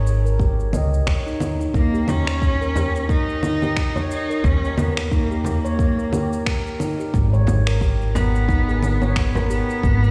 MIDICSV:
0, 0, Header, 1, 6, 480
1, 0, Start_track
1, 0, Tempo, 674157
1, 1242, Time_signature, 4, 2, 24, 8
1, 7197, End_track
2, 0, Start_track
2, 0, Title_t, "Handpan"
2, 0, Program_c, 0, 114
2, 179, Note_on_c, 0, 70, 71
2, 238, Note_off_c, 0, 70, 0
2, 282, Note_on_c, 0, 67, 75
2, 413, Note_off_c, 0, 67, 0
2, 522, Note_on_c, 0, 75, 74
2, 653, Note_off_c, 0, 75, 0
2, 762, Note_on_c, 0, 73, 78
2, 893, Note_off_c, 0, 73, 0
2, 900, Note_on_c, 0, 63, 70
2, 992, Note_off_c, 0, 63, 0
2, 1141, Note_on_c, 0, 63, 70
2, 1199, Note_off_c, 0, 63, 0
2, 1242, Note_on_c, 0, 63, 74
2, 1373, Note_off_c, 0, 63, 0
2, 1379, Note_on_c, 0, 67, 72
2, 1476, Note_off_c, 0, 67, 0
2, 1621, Note_on_c, 0, 73, 93
2, 1717, Note_off_c, 0, 73, 0
2, 1860, Note_on_c, 0, 70, 71
2, 1918, Note_off_c, 0, 70, 0
2, 1963, Note_on_c, 0, 67, 76
2, 2093, Note_off_c, 0, 67, 0
2, 2203, Note_on_c, 0, 70, 77
2, 2432, Note_off_c, 0, 70, 0
2, 2441, Note_on_c, 0, 63, 77
2, 2573, Note_off_c, 0, 63, 0
2, 2580, Note_on_c, 0, 67, 76
2, 2677, Note_off_c, 0, 67, 0
2, 2818, Note_on_c, 0, 73, 99
2, 2916, Note_off_c, 0, 73, 0
2, 3060, Note_on_c, 0, 70, 71
2, 3118, Note_off_c, 0, 70, 0
2, 3162, Note_on_c, 0, 67, 73
2, 3293, Note_off_c, 0, 67, 0
2, 3401, Note_on_c, 0, 70, 72
2, 3631, Note_off_c, 0, 70, 0
2, 3641, Note_on_c, 0, 63, 74
2, 3772, Note_off_c, 0, 63, 0
2, 3779, Note_on_c, 0, 67, 75
2, 3876, Note_off_c, 0, 67, 0
2, 4019, Note_on_c, 0, 73, 100
2, 4116, Note_off_c, 0, 73, 0
2, 4258, Note_on_c, 0, 70, 73
2, 4317, Note_off_c, 0, 70, 0
2, 4359, Note_on_c, 0, 67, 77
2, 4492, Note_off_c, 0, 67, 0
2, 4600, Note_on_c, 0, 70, 78
2, 4831, Note_off_c, 0, 70, 0
2, 4841, Note_on_c, 0, 63, 74
2, 4972, Note_off_c, 0, 63, 0
2, 4979, Note_on_c, 0, 67, 74
2, 5076, Note_off_c, 0, 67, 0
2, 5221, Note_on_c, 0, 73, 97
2, 5317, Note_off_c, 0, 73, 0
2, 5461, Note_on_c, 0, 70, 74
2, 5519, Note_off_c, 0, 70, 0
2, 5564, Note_on_c, 0, 67, 72
2, 5694, Note_off_c, 0, 67, 0
2, 5803, Note_on_c, 0, 70, 76
2, 6032, Note_off_c, 0, 70, 0
2, 6041, Note_on_c, 0, 63, 78
2, 6173, Note_off_c, 0, 63, 0
2, 6181, Note_on_c, 0, 68, 73
2, 6277, Note_off_c, 0, 68, 0
2, 6421, Note_on_c, 0, 73, 94
2, 6517, Note_off_c, 0, 73, 0
2, 6661, Note_on_c, 0, 70, 73
2, 6718, Note_off_c, 0, 70, 0
2, 6765, Note_on_c, 0, 67, 70
2, 6894, Note_off_c, 0, 67, 0
2, 7005, Note_on_c, 0, 70, 75
2, 7197, Note_off_c, 0, 70, 0
2, 7197, End_track
3, 0, Start_track
3, 0, Title_t, "Cello"
3, 0, Program_c, 1, 42
3, 1244, Note_on_c, 1, 58, 98
3, 1482, Note_on_c, 1, 61, 101
3, 1492, Note_off_c, 1, 58, 0
3, 2202, Note_off_c, 1, 61, 0
3, 2205, Note_on_c, 1, 63, 106
3, 2895, Note_off_c, 1, 63, 0
3, 2927, Note_on_c, 1, 63, 99
3, 3167, Note_on_c, 1, 61, 104
3, 3178, Note_off_c, 1, 63, 0
3, 3405, Note_on_c, 1, 59, 84
3, 3416, Note_off_c, 1, 61, 0
3, 3644, Note_off_c, 1, 59, 0
3, 3647, Note_on_c, 1, 58, 84
3, 3868, Note_off_c, 1, 58, 0
3, 3885, Note_on_c, 1, 58, 82
3, 4815, Note_off_c, 1, 58, 0
3, 5801, Note_on_c, 1, 59, 109
3, 6733, Note_off_c, 1, 59, 0
3, 6763, Note_on_c, 1, 59, 127
3, 7197, Note_off_c, 1, 59, 0
3, 7197, End_track
4, 0, Start_track
4, 0, Title_t, "Upright bass"
4, 0, Program_c, 2, 32
4, 0, Note_on_c, 2, 32, 99
4, 516, Note_off_c, 2, 32, 0
4, 520, Note_on_c, 2, 37, 89
4, 703, Note_off_c, 2, 37, 0
4, 761, Note_on_c, 2, 39, 90
4, 1195, Note_off_c, 2, 39, 0
4, 1240, Note_on_c, 2, 39, 95
4, 2996, Note_off_c, 2, 39, 0
4, 3161, Note_on_c, 2, 39, 105
4, 4916, Note_off_c, 2, 39, 0
4, 5082, Note_on_c, 2, 32, 97
4, 6837, Note_off_c, 2, 32, 0
4, 7002, Note_on_c, 2, 32, 103
4, 7197, Note_off_c, 2, 32, 0
4, 7197, End_track
5, 0, Start_track
5, 0, Title_t, "Frame drum"
5, 1486, Note_on_c, 9, 64, 89
5, 1557, Note_off_c, 9, 64, 0
5, 1962, Note_on_c, 9, 64, 88
5, 2033, Note_off_c, 9, 64, 0
5, 2818, Note_on_c, 9, 64, 85
5, 2889, Note_off_c, 9, 64, 0
5, 3399, Note_on_c, 9, 64, 91
5, 3471, Note_off_c, 9, 64, 0
5, 3876, Note_on_c, 9, 64, 85
5, 3947, Note_off_c, 9, 64, 0
5, 5317, Note_on_c, 9, 64, 84
5, 5389, Note_off_c, 9, 64, 0
5, 5805, Note_on_c, 9, 64, 91
5, 5876, Note_off_c, 9, 64, 0
5, 6659, Note_on_c, 9, 64, 91
5, 6730, Note_off_c, 9, 64, 0
5, 7197, End_track
6, 0, Start_track
6, 0, Title_t, "Drums"
6, 49, Note_on_c, 9, 82, 71
6, 120, Note_off_c, 9, 82, 0
6, 188, Note_on_c, 9, 82, 29
6, 260, Note_off_c, 9, 82, 0
6, 281, Note_on_c, 9, 36, 91
6, 290, Note_on_c, 9, 82, 42
6, 352, Note_off_c, 9, 36, 0
6, 361, Note_off_c, 9, 82, 0
6, 427, Note_on_c, 9, 82, 21
6, 498, Note_off_c, 9, 82, 0
6, 520, Note_on_c, 9, 64, 77
6, 527, Note_on_c, 9, 82, 74
6, 592, Note_off_c, 9, 64, 0
6, 598, Note_off_c, 9, 82, 0
6, 667, Note_on_c, 9, 82, 31
6, 738, Note_off_c, 9, 82, 0
6, 761, Note_on_c, 9, 36, 94
6, 762, Note_on_c, 9, 26, 79
6, 769, Note_on_c, 9, 82, 41
6, 832, Note_off_c, 9, 36, 0
6, 833, Note_off_c, 9, 26, 0
6, 840, Note_off_c, 9, 82, 0
6, 907, Note_on_c, 9, 82, 20
6, 978, Note_off_c, 9, 82, 0
6, 1000, Note_on_c, 9, 64, 78
6, 1007, Note_on_c, 9, 82, 68
6, 1071, Note_off_c, 9, 64, 0
6, 1078, Note_off_c, 9, 82, 0
6, 1146, Note_on_c, 9, 82, 31
6, 1217, Note_off_c, 9, 82, 0
6, 1241, Note_on_c, 9, 36, 101
6, 1247, Note_on_c, 9, 82, 44
6, 1312, Note_off_c, 9, 36, 0
6, 1319, Note_off_c, 9, 82, 0
6, 1386, Note_on_c, 9, 82, 21
6, 1457, Note_off_c, 9, 82, 0
6, 1479, Note_on_c, 9, 64, 76
6, 1486, Note_on_c, 9, 82, 76
6, 1550, Note_off_c, 9, 64, 0
6, 1557, Note_off_c, 9, 82, 0
6, 1619, Note_on_c, 9, 26, 78
6, 1626, Note_on_c, 9, 82, 33
6, 1690, Note_off_c, 9, 26, 0
6, 1697, Note_off_c, 9, 82, 0
6, 1721, Note_on_c, 9, 36, 96
6, 1727, Note_on_c, 9, 82, 44
6, 1792, Note_off_c, 9, 36, 0
6, 1798, Note_off_c, 9, 82, 0
6, 1866, Note_on_c, 9, 82, 20
6, 1937, Note_off_c, 9, 82, 0
6, 1968, Note_on_c, 9, 82, 76
6, 2040, Note_off_c, 9, 82, 0
6, 2106, Note_on_c, 9, 82, 33
6, 2177, Note_off_c, 9, 82, 0
6, 2201, Note_on_c, 9, 36, 92
6, 2208, Note_on_c, 9, 82, 42
6, 2272, Note_off_c, 9, 36, 0
6, 2279, Note_off_c, 9, 82, 0
6, 2346, Note_on_c, 9, 82, 20
6, 2418, Note_off_c, 9, 82, 0
6, 2441, Note_on_c, 9, 64, 80
6, 2448, Note_on_c, 9, 82, 75
6, 2512, Note_off_c, 9, 64, 0
6, 2519, Note_off_c, 9, 82, 0
6, 2579, Note_on_c, 9, 64, 60
6, 2586, Note_on_c, 9, 82, 32
6, 2650, Note_off_c, 9, 64, 0
6, 2657, Note_off_c, 9, 82, 0
6, 2681, Note_on_c, 9, 26, 79
6, 2681, Note_on_c, 9, 36, 103
6, 2688, Note_on_c, 9, 82, 44
6, 2752, Note_off_c, 9, 26, 0
6, 2753, Note_off_c, 9, 36, 0
6, 2759, Note_off_c, 9, 82, 0
6, 2826, Note_on_c, 9, 82, 22
6, 2897, Note_off_c, 9, 82, 0
6, 2928, Note_on_c, 9, 82, 80
6, 3000, Note_off_c, 9, 82, 0
6, 3068, Note_on_c, 9, 82, 33
6, 3139, Note_off_c, 9, 82, 0
6, 3161, Note_on_c, 9, 36, 113
6, 3170, Note_on_c, 9, 82, 47
6, 3232, Note_off_c, 9, 36, 0
6, 3241, Note_off_c, 9, 82, 0
6, 3308, Note_on_c, 9, 82, 22
6, 3379, Note_off_c, 9, 82, 0
6, 3401, Note_on_c, 9, 64, 76
6, 3408, Note_on_c, 9, 82, 77
6, 3472, Note_off_c, 9, 64, 0
6, 3479, Note_off_c, 9, 82, 0
6, 3540, Note_on_c, 9, 26, 77
6, 3547, Note_on_c, 9, 82, 34
6, 3611, Note_off_c, 9, 26, 0
6, 3618, Note_off_c, 9, 82, 0
6, 3642, Note_on_c, 9, 36, 100
6, 3647, Note_on_c, 9, 82, 43
6, 3713, Note_off_c, 9, 36, 0
6, 3719, Note_off_c, 9, 82, 0
6, 3785, Note_on_c, 9, 82, 20
6, 3856, Note_off_c, 9, 82, 0
6, 3888, Note_on_c, 9, 82, 79
6, 3959, Note_off_c, 9, 82, 0
6, 4026, Note_on_c, 9, 82, 34
6, 4097, Note_off_c, 9, 82, 0
6, 4122, Note_on_c, 9, 36, 94
6, 4128, Note_on_c, 9, 82, 47
6, 4193, Note_off_c, 9, 36, 0
6, 4199, Note_off_c, 9, 82, 0
6, 4265, Note_on_c, 9, 82, 22
6, 4337, Note_off_c, 9, 82, 0
6, 4362, Note_on_c, 9, 64, 78
6, 4369, Note_on_c, 9, 82, 80
6, 4433, Note_off_c, 9, 64, 0
6, 4440, Note_off_c, 9, 82, 0
6, 4507, Note_on_c, 9, 82, 35
6, 4578, Note_off_c, 9, 82, 0
6, 4602, Note_on_c, 9, 36, 107
6, 4603, Note_on_c, 9, 26, 82
6, 4610, Note_on_c, 9, 82, 47
6, 4673, Note_off_c, 9, 36, 0
6, 4674, Note_off_c, 9, 26, 0
6, 4681, Note_off_c, 9, 82, 0
6, 4747, Note_on_c, 9, 82, 22
6, 4818, Note_off_c, 9, 82, 0
6, 4842, Note_on_c, 9, 64, 76
6, 4848, Note_on_c, 9, 82, 78
6, 4913, Note_off_c, 9, 64, 0
6, 4920, Note_off_c, 9, 82, 0
6, 4987, Note_on_c, 9, 82, 35
6, 5058, Note_off_c, 9, 82, 0
6, 5082, Note_on_c, 9, 36, 109
6, 5088, Note_on_c, 9, 82, 46
6, 5153, Note_off_c, 9, 36, 0
6, 5159, Note_off_c, 9, 82, 0
6, 5227, Note_on_c, 9, 82, 21
6, 5298, Note_off_c, 9, 82, 0
6, 5322, Note_on_c, 9, 64, 68
6, 5329, Note_on_c, 9, 82, 80
6, 5393, Note_off_c, 9, 64, 0
6, 5400, Note_off_c, 9, 82, 0
6, 5460, Note_on_c, 9, 26, 81
6, 5467, Note_on_c, 9, 82, 36
6, 5532, Note_off_c, 9, 26, 0
6, 5539, Note_off_c, 9, 82, 0
6, 5562, Note_on_c, 9, 36, 102
6, 5570, Note_on_c, 9, 82, 45
6, 5633, Note_off_c, 9, 36, 0
6, 5641, Note_off_c, 9, 82, 0
6, 5708, Note_on_c, 9, 82, 22
6, 5779, Note_off_c, 9, 82, 0
6, 5809, Note_on_c, 9, 82, 82
6, 5880, Note_off_c, 9, 82, 0
6, 5949, Note_on_c, 9, 82, 35
6, 6020, Note_off_c, 9, 82, 0
6, 6042, Note_on_c, 9, 36, 104
6, 6051, Note_on_c, 9, 82, 45
6, 6113, Note_off_c, 9, 36, 0
6, 6122, Note_off_c, 9, 82, 0
6, 6188, Note_on_c, 9, 82, 22
6, 6260, Note_off_c, 9, 82, 0
6, 6284, Note_on_c, 9, 64, 70
6, 6290, Note_on_c, 9, 82, 82
6, 6355, Note_off_c, 9, 64, 0
6, 6362, Note_off_c, 9, 82, 0
6, 6420, Note_on_c, 9, 64, 58
6, 6427, Note_on_c, 9, 82, 35
6, 6491, Note_off_c, 9, 64, 0
6, 6498, Note_off_c, 9, 82, 0
6, 6522, Note_on_c, 9, 26, 80
6, 6522, Note_on_c, 9, 36, 104
6, 6529, Note_on_c, 9, 82, 47
6, 6593, Note_off_c, 9, 26, 0
6, 6593, Note_off_c, 9, 36, 0
6, 6600, Note_off_c, 9, 82, 0
6, 6667, Note_on_c, 9, 82, 23
6, 6738, Note_off_c, 9, 82, 0
6, 6768, Note_on_c, 9, 82, 76
6, 6840, Note_off_c, 9, 82, 0
6, 6907, Note_on_c, 9, 82, 33
6, 6978, Note_off_c, 9, 82, 0
6, 7002, Note_on_c, 9, 36, 111
6, 7009, Note_on_c, 9, 82, 44
6, 7073, Note_off_c, 9, 36, 0
6, 7080, Note_off_c, 9, 82, 0
6, 7147, Note_on_c, 9, 82, 22
6, 7197, Note_off_c, 9, 82, 0
6, 7197, End_track
0, 0, End_of_file